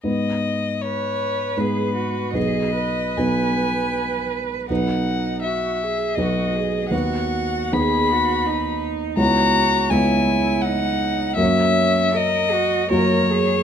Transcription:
X:1
M:3/4
L:1/8
Q:1/4=80
K:G#m
V:1 name="Violin"
d2 c2 B2 | d2 g3 z | f2 e2 d2 | f2 b3 z |
a2 g2 f2 | e2 d2 c2 |]
V:2 name="Cello"
z2 B2 G F | G B4- B | D2 F G F G | F2 G F D2 |
F2 E2 D2 | C2 A F A G |]
V:3 name="Grand piano"
[G,,B,DB]4 [G,,B,DB]2 | [B,,,B,DB]2 [B,,,B,DB]4 | [B,,,B,DB]4 [B,,,B,DB]2 | [D,,B,DB]2 [D,,B,DB]4 |
[C,,B,Ec]2 [C,,B,Ec]4 | [F,,A,Fc]4 [F,,A,Fc]2 |]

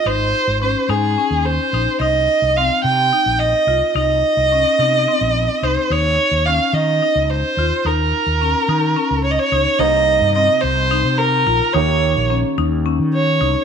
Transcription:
X:1
M:7/8
L:1/16
Q:1/4=108
K:Cphr
V:1 name="Violin"
c4 c2 A4 c4 | e4 f2 g4 e4 | e12 c2 | d4 f2 e4 c4 |
B8- B2 d/2 e/2 d3 | e4 e2 c4 B4 | d4 z6 d4 |]
V:2 name="Marimba"
E4 D2 E2 D4 E2 | E4 C4 E4 F2 | E4 D2 E2 C4 E2 | E4 D4 E4 F2 |
E4 D2 E2 D4 E2 | E4 C4 E4 F2 | E4 D2 E2 D4 E2 |]
V:3 name="Grand piano"
z12 z2 | z12 z2 | z12 z2 | z12 z2 |
z12 z2 | [C,B,Ec]12- [C,B,Ec]2 | [E,B,Gd]12- [E,B,Gd]2 |]
V:4 name="Fretless electric bass" clef=bass
A,,,2 z A,,,2 z A,,2 z E,,2 z B,,, z | C,,2 z C,,2 z C,2 z B,,,2 z C,, z | C,,2 z C,,2 z C,2 z B,,,2 z C,, z | E,,2 z E,,2 z E,2 z D,,2 z E,, z |
E,,2 z E,,2 z E,2 z D,,2 z D,, z | C,,3 G,,2 z C,,3 C,3 B,,, z | E,,3 B,,,2 z E,,3 E,3 C,, z |]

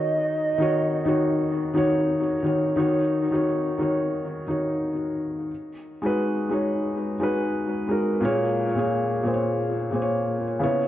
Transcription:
X:1
M:4/4
L:1/16
Q:"Swing 16ths" 1/4=88
K:Ebm
V:1 name="Soft synth lead"
e12 z4 | z16 | z16 | z16 |]
V:2 name="Felt piano"
[E,EGd]3 [E,EGd]3 [E,EGd]4 [E,EGd]4 [E,EGd]2 | [E,EGd]3 [E,EGd]3 [E,EGd]4 [E,EGd]6 | z3 [A,EGc]3 [A,EGd]4 [A,EGc]4 [A,EGB]2 | [B,,B,Ad]3 [B,,B,Ad]3 [B,,B,A=cd]4 [B,,B,Acd]4 [D,_C_Fd]2 |]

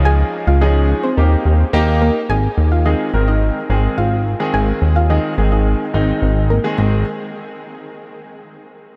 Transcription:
X:1
M:4/4
L:1/16
Q:1/4=107
K:Ab
V:1 name="Synth pluck"
[Aa]2 z [Ff] [Ee] z2 [Cc]3 z4 [B,B] z | [Aa]2 z [Ff] [Ee] z2 [Ee]3 z2 [Ff]3 z | [Aa]2 z [Ff] [Ee] z2 [Ee]3 z4 [B,B] z | A,2 z12 z2 |]
V:2 name="Grand piano"
[F,A,DEA]3 z [F,A,DEA]3 z [B,EG]3 z [B,EG]3 z | z4 [E,A,CA]2 [E,A,CB]3 z [E,A,CA]4 z [E,A,CA]- | [E,A,CA]3 z [E,A,CA]2 [E,A,CA]3 z [E,A,CE]4 z [E,A,CA] | [E,A,CA]2 z12 z2 |]
V:3 name="Analog synth bass" clef=bass
D,,3 D,,4- D,, E,,2 E,,2 E,,4 | A,,,2 E,,4 A,,,4 A,,,2 A,,,4 | A,,,2 E,,4 A,,,4 A,,,2 A,,,4 | A,,,2 z12 z2 |]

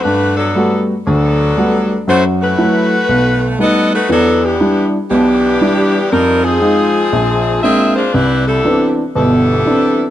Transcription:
X:1
M:4/4
L:1/8
Q:"Swing" 1/4=119
K:G
V:1 name="Saxophone section"
[A,DFB] [F,B,DA]2 z [F,B,DA]4 | [A,EFc] [A,EFB]4- [A,EFB] [B,FA^d] [A,^DFB] | [F,B,DA] [E,B,DG]2 z [E,B,DG]4 | [G,C_E_B] [=F,CE_A]4- [F,CEA] [C=FA=e] [_A,DFc] |
[G,DEB] [G,DEA]2 z [G,DEA]4 |]
V:2 name="Grand piano"
G,,2 [G,A,B,F] z D,,2 [G,A,B,F] z | [F,,F,]2 [F,A,E] z B,,,2 [G,A,B,^D] z | [E,,E,]2 [G,DE] z [B,,,B,,]2 [G,DE] z | =F,,2 [_A,_E=F] z _B,,,2 [A,_B,CD] z |
C,,2 [E,B,CD] z [G,,,B,,]2 [E,B,CD] z |]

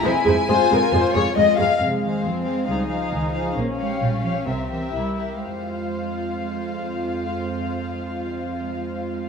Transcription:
X:1
M:4/4
L:1/8
Q:1/4=129
K:Fm
V:1 name="Violin section"
c c c B c d e f | z f2 f f f2 f | z f2 f =e e2 e | f8- |
f8 |]
V:2 name="Violin section"
a6- a z | z [Ac]2 [Ac] [Ac] [Ac]2 [Ac] | z [Gd]2 [Gd] [GB] [GB]2 [GB] | c8- |
c8 |]
V:3 name="Viola section"
[A,A] [A,A] [A,A] [A,A] [A,A] [A,A] [A,A] [A,A] | A,2 C2 E4 | D4 C2 =E z | F8- |
F8 |]
V:4 name="Cello section" clef=bass
=E2 F4- F z | C, E, F, A, G, F, E, F, | B, A, G, F, C, =E, G,2 | A,8- |
A,8 |]
V:5 name="Double bass section" clef=bass
F,, F,, F,, F,, F,, F,, F,, F,, | F,,2 F,,2 D,,2 D,,2 | B,,,2 B,,,2 C,,2 C,,2 | F,,8- |
F,,8 |]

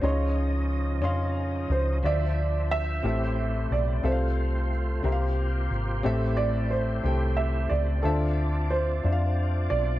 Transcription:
X:1
M:6/8
L:1/8
Q:3/8=60
K:Aphr
V:1 name="Grand piano"
_d4- d c | d2 e3 d | c4- c z | z d c2 e d |
A2 c3 d |]
V:2 name="Upright piano"
[_D_EF_ec']2 z [DFfc']2 z | [DFce]2 z [CGAe]2 z | [CFAef]2 z [CGBef]2 z | [CGAe]2 z [CGAg]2 z |
[DFce]2 z [DFcef]2 z |]
V:3 name="Upright piano" clef=bass
_D,3 z3 | D,3 A,,3 | C,3 C,3 | A,,3 z3 |
D,3 z3 |]
V:4 name="Tonewheel organ"
[F,_D_E_e]6 | [F,Dce]3 [A,EGBc]3 | [A,CF=Bc]3 [_B,FGc]3 | [A,EGc]6 |
[CDFd]6 |]
V:5 name="Fingered electric bass" clef=bass
_D,,3 F,,2 D,, | D,,3 A,,,2 =B,,, | C,,3 C,,2 _A,,, | A,,,3 C,,2 _D,, |
D,,3 F,,2 =B,,, |]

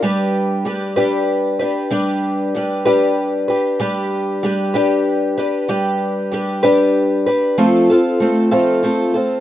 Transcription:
X:1
M:6/8
L:1/8
Q:3/8=64
K:Gmix
V:1 name="Twelve-string acoustic guitar"
[G,DGB]2 [G,DGB] [G,DGB]2 [DGB] | [G,DGB]2 [G,DGB] [G,DGB]2 [DGB] | [G,DGB]2 [G,DGB] [G,DGB]2 [DGB] | [G,DGB]2 [G,DGB] [G,DGB]2 [DGB] |
[F,A,CFA] [CFA] [A,CFA] [F,A,CFA] [A,CFA] [CFA] |]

